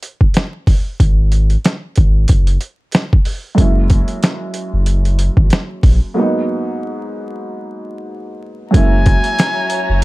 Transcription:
0.03 closed hi-hat medium
0.21 kick loud
0.34 snare loud
0.34 snare medium
0.34 closed hi-hat medium
0.67 kick loud
0.67 open hi-hat medium
1.00 1.56 G#1 loud
1.00 kick loud
1.00 closed hi-hat medium
1.32 closed hi-hat medium
1.50 closed hi-hat medium
1.65 snare loud
1.65 snare medium
1.65 closed hi-hat medium
1.96 2.26 G#1 medium
1.96 kick medium
1.96 closed hi-hat medium
2.28 2.58 F#1 medium
2.28 kick loud
2.28 closed hi-hat loud
2.47 closed hi-hat medium
2.61 closed hi-hat medium
2.92 snare loud
2.92 snare medium
2.92 closed hi-hat medium
3.13 kick loud
3.25 open hi-hat medium
3.55 4.02 F#1 loud
3.55 6.11 F#2 medium
3.55 6.11 G#3 medium
3.55 6.12 A#3 medium
3.55 6.12 C#4 medium
3.55 kick loud
3.55 closed hi-hat medium
3.60 6.13 E4 medium
3.90 kick loud
3.90 closed hi-hat medium
4.08 closed hi-hat medium
4.23 snare loud
4.23 snare medium
4.23 closed hi-hat medium
4.54 closed hi-hat medium
4.73 5.29 F#1 medium
4.86 closed hi-hat loud
5.05 closed hi-hat medium
5.19 closed hi-hat medium
5.37 5.50 G#1 medium
5.37 kick loud
5.50 snare loud
5.50 snare medium
5.50 closed hi-hat medium
5.83 5.99 A#1 loud
5.83 kick loud
5.83 open hi-hat medium
6.14 8.69 G#2 medium
6.14 8.70 F#3 medium
6.14 8.71 A#3 medium
6.14 8.71 B3 medium
6.20 8.72 D#4 medium
8.71 9.18 F#1 loud
8.71 10.04 F#2 medium
8.71 10.04 G#3 medium
8.71 10.04 A#3 medium
8.71 10.04 C#4 medium
8.71 10.04 F#4 medium
8.71 10.04 C#5 medium
8.71 10.04 E5 medium
8.71 9.99 G#5 loud
8.71 10.04 A#5 medium
8.71 kick loud
8.71 closed hi-hat medium
8.76 10.04 E4 medium
9.06 kick loud
9.06 closed hi-hat medium
9.24 closed hi-hat medium
9.39 snare loud
9.39 closed hi-hat loud
9.70 closed hi-hat medium
9.90 10.04 F#1 medium

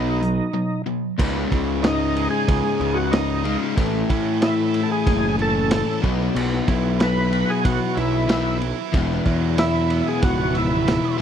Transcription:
0.00 0.40 B1 medium
0.00 0.19 B2 medium
0.00 0.20 F#3 medium
0.00 0.20 B3 medium
0.00 0.82 D#4 medium
0.22 0.51 B2 medium
0.22 0.51 F#3 medium
0.22 closed hi-hat medium
0.53 0.83 B2 medium
0.53 0.83 F#3 medium
0.86 1.16 B2 medium
0.86 1.16 F#3 medium
1.18 2.80 C#2 medium
1.18 1.44 C#2 loud
1.18 3.44 G#2 loud
1.18 3.43 C#3 loud
1.18 3.75 G#3 medium
1.18 3.75 D#4 medium
1.18 3.75 C#5 medium
1.18 kick loud
1.18 crash loud
1.36 snare soft
1.51 2.27 C#2 medium
1.51 2.78 C#3 medium
1.51 kick medium
1.51 ride medium
1.83 2.28 D#4 loud
1.83 3.11 D#4 medium
1.83 2.28 D#5 medium
1.83 snare loud
1.83 ride medium
2.15 3.77 G#3 medium
2.15 ride medium
2.29 2.98 G#4 loud
2.29 2.91 G#5 medium
2.48 2.61 C#2 loud
2.48 3.77 G#2 medium
2.48 kick loud
2.48 ride loud
2.80 3.55 C#2 medium
2.80 3.43 C#3 medium
2.80 ride medium
2.94 3.12 F#4 loud
2.94 3.11 F#5 medium
3.11 3.57 D#4 medium
3.11 3.77 D#4 medium
3.11 3.57 D#5 medium
3.11 snare loud
3.11 ride loud
3.44 3.75 C#2 medium
3.44 3.76 G#2 medium
3.44 3.77 C#3 medium
3.44 ride medium
3.62 snare soft
3.76 4.02 A1 loud
3.76 5.38 A2 medium
3.76 6.04 E3 medium
3.76 6.01 A3 medium
3.76 6.02 A3 loud
3.76 6.01 E4 medium
3.76 6.01 C#5 medium
3.76 kick loud
3.76 ride loud
3.94 snare soft
4.09 4.84 A2 medium
4.09 5.37 C#4 medium
4.09 kick medium
4.09 ride medium
4.41 4.81 E4 medium
4.41 5.69 A4 medium
4.41 4.81 E5 medium
4.41 snare loud
4.41 ride loud
4.74 6.67 E4 medium
4.74 ride medium
4.83 4.90 A4 medium
4.83 4.90 A5 medium
4.92 5.36 G#4 loud
4.92 5.36 G#5 medium
5.06 5.81 F#1 loud
5.06 6.03 A3 medium
5.06 kick loud
5.06 ride loud
5.38 6.03 C#4 medium
5.38 6.01 A4 loud
5.38 6.00 A5 medium
5.38 ride medium
5.70 6.03 A4 medium
5.70 snare loud
5.70 ride loud
6.02 6.28 B1 medium
6.02 6.34 B2 medium
6.02 8.91 F#3 medium
6.02 8.28 F#3 loud
6.02 8.28 B3 loud
6.02 8.91 E4 medium
6.02 8.91 B4 medium
6.02 kick medium
6.02 ride medium
6.21 snare soft
6.35 6.60 B1 loud
6.35 7.97 B2 medium
6.35 crash loud
6.53 snare soft
6.67 7.43 B1 loud
6.67 7.95 E4 medium
6.67 kick medium
6.67 ride medium
6.99 8.28 B4 medium
6.99 7.46 B5 medium
6.99 snare loud
6.99 ride loud
7.03 7.51 B4 loud
7.32 8.93 F#4 medium
7.32 ride medium
7.49 7.64 G#4 loud
7.49 7.63 G#5 medium
7.64 7.77 B1 medium
7.64 8.94 B3 medium
7.64 7.98 F#4 medium
7.64 7.94 F#5 medium
7.64 kick loud
7.64 ride medium
7.95 8.72 B1 loud
7.95 8.59 E4 medium
7.95 8.58 E4 medium
7.95 8.57 E5 medium
7.95 ride medium
8.28 8.59 B2 medium
8.28 8.60 F#3 medium
8.28 8.61 B3 medium
8.28 8.94 B4 medium
8.28 snare loud
8.28 ride loud
8.61 8.93 E4 medium
8.61 ride medium
8.93 9.19 E1 loud
8.93 10.55 E2 medium
8.93 11.18 B2 loud
8.93 11.17 E3 loud
8.93 11.21 F#3 medium
8.93 11.21 E4 medium
8.93 11.21 B4 medium
8.93 kick loud
8.93 ride medium
9.10 snare soft
9.25 10.01 E2 loud
9.25 10.53 F#3 medium
9.25 kick medium
9.25 ride medium
9.57 10.85 E4 medium
9.57 10.08 E4 medium
9.57 10.03 E5 medium
9.57 snare loud
9.57 ride loud
9.90 11.21 B3 medium
9.90 ride medium
10.07 10.24 G#4 medium
10.07 10.22 G#5 medium
10.22 10.98 C#1 loud
10.22 11.21 E3 medium
10.22 10.57 F#4 medium
10.22 10.52 F#5 medium
10.22 kick loud
10.22 ride loud
10.54 11.18 F#3 medium
10.54 11.17 E4 medium
10.54 11.15 E5 medium
10.54 ride medium
10.87 11.21 E4 medium
10.87 snare loud
10.87 ride loud
11.18 11.21 E3 loud

